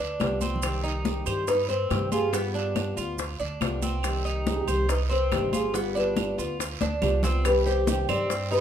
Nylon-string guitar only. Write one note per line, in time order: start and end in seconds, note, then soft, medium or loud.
0.00 0.39 B4 medium
1.06 1.50 G4 medium
1.48 1.68 B4 medium
1.68 2.11 C5 loud
2.12 2.32 G#4 medium
2.33 2.55 G4 medium
2.54 2.94 F4 medium
4.48 4.55 G4 medium
4.55 4.61 G#4 medium
4.61 4.89 G4 medium
4.90 5.10 B4 medium
5.11 5.55 C5 loud
5.55 5.76 G#4 medium
5.76 5.98 G4 medium
5.97 6.36 B4 medium
7.03 7.42 G4 medium
7.46 7.66 B4 loud
7.67 8.09 C5 medium
8.10 8.52 D5 loud
8.52 8.61 C5 medium